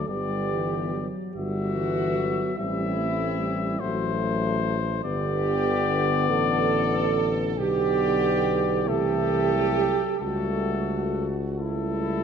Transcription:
0.06 1.07 G1 medium
0.06 0.50 G3 medium
0.06 1.07 B3 medium
0.06 1.17 G4 loud
0.06 1.07 D5 medium
0.50 0.94 E3 medium
0.93 1.33 F#3 medium
1.34 2.54 G1 medium
1.34 1.76 G3 medium
1.34 2.53 B3 medium
1.34 2.55 F#4 loud
1.34 2.54 E5 medium
1.75 2.17 E3 medium
2.16 2.57 F#3 medium
2.56 3.79 A1 medium
2.56 2.98 G3 medium
2.56 3.82 C4 medium
2.56 3.77 E4 loud
2.56 3.81 E5 medium
2.97 3.40 A3 medium
3.38 3.80 G3 medium
3.78 5.03 A1 medium
3.78 4.88 F#3 medium
3.78 5.03 A3 medium
3.78 4.21 F#4 loud
3.78 5.04 C5 medium
5.04 6.30 G1 medium
5.04 7.54 D3 medium
5.04 7.54 B3 medium
5.04 6.25 G4 loud
5.04 7.41 D5 medium
6.29 7.58 A1 medium
6.29 7.58 A4 loud
7.57 8.88 B1 medium
7.57 8.87 D3 medium
7.57 8.89 B3 medium
7.57 8.86 G4 loud
7.57 8.90 D5 medium
8.86 10.04 C2 medium
8.86 9.54 E3 medium
8.86 10.03 A3 medium
8.86 10.18 G4 loud
8.86 10.20 A4 medium
9.53 10.19 F#3 medium
10.19 12.24 C#2 medium
10.19 11.26 G3 medium
10.19 11.27 A3 medium
10.19 11.60 F#4 loud
10.19 11.27 A4 medium
11.57 12.24 G3 medium
11.57 12.24 A3 medium
11.57 12.24 E4 loud
11.57 12.24 A4 medium

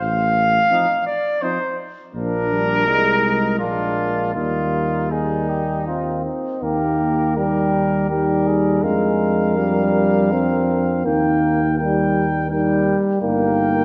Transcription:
0.00 0.60 A1 soft
0.00 1.04 F5 medium
0.71 0.88 F3 soft
0.71 0.87 C4 soft
0.71 0.88 D#4 soft
1.06 1.44 D5 medium
1.42 1.59 F3 soft
1.42 1.58 C4 soft
1.42 1.59 D#4 soft
1.42 1.78 C5 soft
2.14 2.88 A#1 soft
2.14 2.53 F3 soft
2.14 2.88 A#3 soft
2.14 2.89 D4 soft
2.14 3.56 A#4 medium
2.52 2.89 G3 soft
2.87 3.62 C2 soft
2.87 3.61 G#3 soft
2.87 3.59 G#3 soft
2.87 3.61 D#4 soft
3.59 4.35 A#1 soft
3.59 4.37 G#3 soft
3.59 4.35 A#3 soft
3.59 4.34 D4 soft
3.59 4.33 F4 medium
4.34 6.26 D#2 soft
4.34 5.11 G3 soft
4.34 5.10 A#3 soft
4.34 5.10 D#4 soft
4.34 5.12 F4 soft
5.11 5.86 G3 soft
5.11 6.28 A#3 soft
5.11 6.25 D#4 soft
5.11 5.51 G#4 soft
5.49 5.86 G4 soft
5.87 6.65 C4 soft
5.87 6.24 F4 soft
6.25 6.62 D#4 soft
6.62 8.79 D#2 soft
6.62 7.39 A#3 soft
6.62 7.33 D#4 soft
6.62 7.33 G4 soft
6.62 7.32 A#4 soft
7.36 8.09 G3 medium
7.36 8.09 D#4 soft
7.36 8.09 G4 soft
7.36 8.08 A#4 soft
8.10 8.85 G3 medium
8.10 8.85 D#4 soft
8.10 8.49 G4 soft
8.10 8.84 A#4 soft
8.47 8.85 G#4 soft
8.82 11.02 F2 soft
8.82 9.58 G#3 medium
8.82 11.05 D4 soft
8.82 10.89 A#4 soft
8.82 11.05 F5 soft
9.56 10.34 G3 medium
10.32 11.07 C4 medium
11.05 12.92 D#2 soft
11.05 11.62 A#3 medium
11.05 11.77 D#4 soft
11.05 11.77 A#4 soft
11.05 11.77 G5 soft
11.78 12.25 G3 medium
11.78 12.50 D#4 soft
11.78 12.49 A#4 soft
11.78 12.49 G5 soft
12.50 13.18 G3 medium
12.50 12.96 D#4 soft
12.50 12.97 A#4 soft
12.50 12.96 G5 soft
13.21 13.85 G1 soft
13.21 13.85 A#3 medium
13.21 13.85 D#4 medium
13.21 13.85 A#4 soft
13.21 13.85 G5 medium

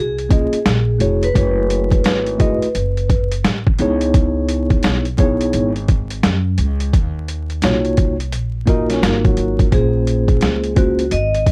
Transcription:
0.00 0.50 C2 medium
0.00 1.27 G#4 loud
0.19 closed hi-hat soft
0.29 0.57 A#3 medium
0.29 0.58 C#4 medium
0.29 0.58 F4 medium
0.29 0.58 G#4 medium
0.29 0.59 D#5 medium
0.29 kick loud
0.29 closed hi-hat medium
0.52 muted upright bass stroke soft
0.52 closed hi-hat medium
0.66 0.99 A#1 loud
0.66 snare loud
0.66 closed hi-hat medium
0.99 1.34 F1 medium
0.99 1.27 A3 medium
0.99 1.27 E4 medium
0.99 1.27 F#4 medium
0.99 1.28 G#4 medium
0.99 1.28 C#5 medium
0.99 closed hi-hat medium
1.23 3.28 B4 loud
1.23 closed hi-hat soft
1.34 2.02 F#1 loud
1.34 2.34 A3 medium
1.34 2.35 E4 medium
1.34 2.35 F#4 medium
1.34 2.35 G#4 medium
1.34 2.36 C#5 medium
1.34 kick loud
1.34 closed hi-hat medium
1.70 closed hi-hat medium
1.91 kick medium
1.91 closed hi-hat soft
2.04 2.59 G#1 medium
2.04 snare loud
2.04 closed hi-hat medium
2.26 closed hi-hat soft
2.38 2.66 A3 medium
2.38 2.67 E4 medium
2.38 2.67 F#4 medium
2.38 2.67 G#4 medium
2.38 2.68 D#5 medium
2.38 kick loud
2.38 closed hi-hat medium
2.62 muted upright bass stroke soft
2.62 closed hi-hat medium
2.75 3.41 F#1 medium
2.75 closed hi-hat medium
2.97 closed hi-hat soft
3.10 kick medium
3.10 closed hi-hat medium
3.32 closed hi-hat medium
3.45 3.78 A1 medium
3.45 snare loud
3.45 closed hi-hat medium
3.67 kick medium
3.79 4.80 C#2 loud
3.79 5.04 B3 medium
3.79 5.05 D#4 medium
3.79 5.05 E4 medium
3.79 5.05 G#4 medium
3.79 5.06 C#5 loud
3.79 closed hi-hat medium
4.01 closed hi-hat medium
4.14 kick loud
4.14 closed hi-hat medium
4.48 closed hi-hat medium
4.70 kick medium
4.70 closed hi-hat soft
4.83 5.50 B1 medium
4.83 snare loud
4.83 closed hi-hat medium
5.05 closed hi-hat soft
5.18 5.71 B3 medium
5.18 5.71 D#4 medium
5.18 5.71 E4 medium
5.18 5.72 G#4 medium
5.18 5.72 C#5 loud
5.18 kick loud
5.18 closed hi-hat medium
5.41 closed hi-hat medium
5.53 6.20 G#1 medium
5.53 closed hi-hat medium
5.76 closed hi-hat soft
5.88 kick loud
5.88 closed hi-hat medium
6.10 closed hi-hat medium
6.23 6.57 F#2 medium
6.23 snare loud
6.23 closed hi-hat medium
6.58 6.91 C#2 loud
6.58 closed hi-hat medium
6.80 closed hi-hat medium
6.93 7.64 D#2 loud
6.93 kick loud
6.93 closed hi-hat medium
7.28 closed hi-hat medium
7.50 closed hi-hat soft
7.62 8.32 C2 medium
7.62 8.15 A#3 medium
7.62 8.15 D#4 medium
7.62 8.16 F4 medium
7.62 8.16 F#4 medium
7.62 8.16 C#5 medium
7.62 snare medium
7.62 closed hi-hat medium
7.85 closed hi-hat soft
7.97 kick medium
7.97 closed hi-hat medium
8.20 closed hi-hat medium
8.32 9.04 A#1 medium
8.32 closed hi-hat medium
8.66 9.66 A#3 medium
8.66 9.67 D#4 medium
8.66 8.92 D#4 medium
8.66 9.67 F4 medium
8.66 9.67 F#4 medium
8.66 9.68 A#4 medium
8.66 kick loud
8.66 closed hi-hat medium
8.90 9.05 C#4 medium
8.90 snare soft
8.90 closed hi-hat medium
9.02 9.36 G#1 medium
9.02 9.24 A#3 medium
9.02 snare loud
9.02 closed hi-hat medium
9.25 9.70 F#3 medium
9.25 kick loud
9.25 closed hi-hat soft
9.37 9.71 G#1 medium
9.37 closed hi-hat medium
9.59 kick medium
9.59 closed hi-hat medium
9.71 10.39 A#1 loud
9.71 10.71 A#3 medium
9.71 10.71 C#4 medium
9.71 10.72 F4 medium
9.71 10.72 G#4 medium
9.71 10.74 G#4 medium
9.71 10.72 C5 medium
9.71 kick loud
9.71 closed hi-hat medium
10.07 closed hi-hat medium
10.28 kick medium
10.28 closed hi-hat soft
10.41 11.13 C#2 medium
10.41 snare medium
10.41 closed hi-hat medium
10.64 closed hi-hat soft
10.76 11.03 A#3 medium
10.76 11.04 C#4 medium
10.76 11.04 F4 medium
10.76 11.10 F#4 medium
10.76 11.04 G#4 medium
10.76 11.05 C5 medium
10.76 kick loud
10.76 closed hi-hat medium
10.99 closed hi-hat medium
11.11 11.52 G#1 medium
11.11 11.52 D#5 loud
11.11 closed hi-hat medium
11.34 closed hi-hat soft
11.46 kick loud
11.46 closed hi-hat medium

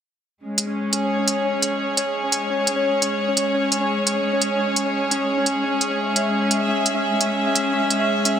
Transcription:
0.41 8.39 G#3 medium
0.41 8.39 C#4 medium
0.41 6.01 C#5 medium
0.58 closed hi-hat medium
0.65 8.39 C#4 medium
0.91 8.39 G#4 medium
0.91 closed hi-hat medium
1.02 6.62 C#5 medium
1.28 closed hi-hat medium
1.62 closed hi-hat medium
1.97 closed hi-hat medium
2.32 closed hi-hat medium
2.67 closed hi-hat medium
3.02 closed hi-hat medium
3.37 closed hi-hat medium
3.72 closed hi-hat medium
4.07 closed hi-hat medium
4.42 closed hi-hat medium
4.76 closed hi-hat medium
5.11 closed hi-hat medium
5.46 closed hi-hat medium
5.81 closed hi-hat medium
5.98 8.39 E5 medium
6.16 closed hi-hat medium
6.51 closed hi-hat medium
6.61 8.39 E5 medium
6.86 closed hi-hat medium
7.21 closed hi-hat medium
7.55 closed hi-hat medium
7.90 closed hi-hat medium
8.25 closed hi-hat medium

